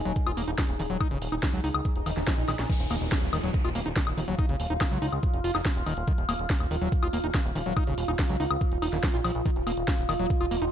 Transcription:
Already playing: D#4 G#4
0.05 D#1 F#3, closed hi-hat
0.16 kick, closed hi-hat
0.27 D#1 F4, closed hi-hat, high woodblock
0.37 D#1 A#3, open hi-hat
0.48 D#1 D#4, closed hi-hat
0.58 D#3, kick, snare, closed hi-hat, high woodblock
0.69 D#1, closed hi-hat
0.79 D#1 D#3, open hi-hat
0.90 D#1 F#3, closed hi-hat
1.01 D#4, kick, closed hi-hat, high woodblock
1.11 D#1 C#3, closed hi-hat
1.22 D#1, open hi-hat
1.32 D#1 D#4, closed hi-hat, high woodblock
1.43 D#3, kick, snare, closed hi-hat
1.53 C#2 F#3, closed hi-hat
1.64 C#2 D#4, open hi-hat
1.74 C#2, closed hi-hat, high woodblock
1.85 kick, closed hi-hat, swell
1.96 D#1, closed hi-hat
2.06 D#1 D#3, open hi-hat, high woodblock
2.17 D#1 D#3, snare
2.27 F3, kick, snare, closed hi-hat
2.38 A#1, closed hi-hat
2.48 A#1 D#3, snare, open hi-hat, high woodblock
2.59 A#1, snare, closed hi-hat
2.70 D#3 F4 F5, kick, closed hi-hat, crash, downlifter
2.80 D#1, closed hi-hat
2.91 D#1 A#3, open hi-hat, high woodblock
3.01 D#1, closed hi-hat
3.12 kick, snare, closed hi-hat
3.22 D#1, closed hi-hat
3.33 D#1 D#3, open hi-hat, high woodblock
3.43 D#1 F#3, closed hi-hat
3.54 kick, closed hi-hat
3.65 D#1 F4, closed hi-hat, high woodblock
3.75 D#1 A#3, open hi-hat
3.86 D#1 D#4, closed hi-hat
3.96 D#3, kick, snare, closed hi-hat
4.07 D#1, closed hi-hat, high woodblock
4.17 D#1 D#3, open hi-hat
4.28 D#1 F#3
4.39 D#4, kick, closed hi-hat, high woodblock
4.49 D#1 C#3, closed hi-hat
4.60 D#1, open hi-hat
4.70 D#1 D#4
4.81 D#3, kick, snare, closed hi-hat, high woodblock
4.91 C#2 F#3, closed hi-hat
5.02 C#2 D#4, open hi-hat
5.12 C#2, closed hi-hat, high woodblock
5.23 kick, closed hi-hat
5.34 F1, closed hi-hat
5.44 F1 F4, open hi-hat
5.55 F1 D#4, snare, closed hi-hat, high woodblock
5.65 D#3, kick, snare, closed hi-hat
5.76 D#1, closed hi-hat
5.86 D#1 D#3, open hi-hat, high woodblock
5.97 D#1, closed hi-hat
6.08 D#3, kick, closed hi-hat
6.18 D#1, closed hi-hat
6.29 D#1 A#3, open hi-hat, high woodblock
6.39 D#1
6.50 kick, snare, closed hi-hat
6.60 D#1, closed hi-hat, high woodblock
6.71 D#1 D#3, open hi-hat
6.82 D#1 F#3, closed hi-hat
6.92 kick, closed hi-hat
7.03 D#1 F4, closed hi-hat, high woodblock
7.13 D#1 A#3, open hi-hat
7.24 D#1 D#4, closed hi-hat
7.34 D#3, kick, snare, closed hi-hat, high woodblock
7.45 D#1, closed hi-hat
7.55 D#1 D#3, open hi-hat
7.66 D#1 F#3, closed hi-hat
7.77 D#4, kick, closed hi-hat, high woodblock
7.87 D#1 C#3, closed hi-hat
7.98 D#1, open hi-hat
8.08 D#1 D#4, closed hi-hat, high woodblock
8.19 D#3, kick, snare, closed hi-hat
8.29 C#2 F#3, closed hi-hat
8.40 C#2 D#4, open hi-hat
8.51 C#2, closed hi-hat, high woodblock
8.61 kick, closed hi-hat
8.72 D#1, closed hi-hat
8.82 D#1 D#4, open hi-hat, high woodblock
8.93 D#1 D#3, snare, closed hi-hat
9.03 F3, kick, snare, closed hi-hat
9.14 A#1 F4, closed hi-hat
9.24 A#1 F3, open hi-hat, high woodblock
9.35 A#1, closed hi-hat
9.46 D#3 D#5, kick, closed hi-hat
9.56 D#1, closed hi-hat
9.67 D#1 A#3, open hi-hat, high woodblock
9.77 D#1, closed hi-hat
9.88 kick, snare, closed hi-hat
9.98 D#1, closed hi-hat
10.09 D#1 D#3, open hi-hat, high woodblock
10.20 D#1 F#3, closed hi-hat
10.30 kick, closed hi-hat
10.41 D#1 F4, closed hi-hat, high woodblock
10.51 D#1 A#3, open hi-hat
10.62 D#1 D#4, closed hi-hat

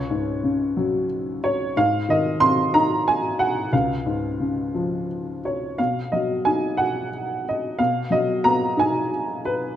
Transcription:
Already playing: C#2 C#5
0.10 G#2
0.43 C#3
0.77 F#3
1.44 C#5
1.77 G#2 F5
2.09 D#3 D#5
2.40 C4 C6
2.74 D#4 A#5
3.08 G#5
3.39 F#5
3.73 C#2 F5
4.06 G#2
4.40 C#3
4.75 F3
5.45 C#5
5.78 B2 F5
6.12 F#3 D#5
6.45 D#4 G#5
6.77 F#4 F#5
7.49 D#5
7.79 B2 F5
8.10 F#3 D#5
8.44 B3 A#5
8.77 D#4 G#5
9.45 B4

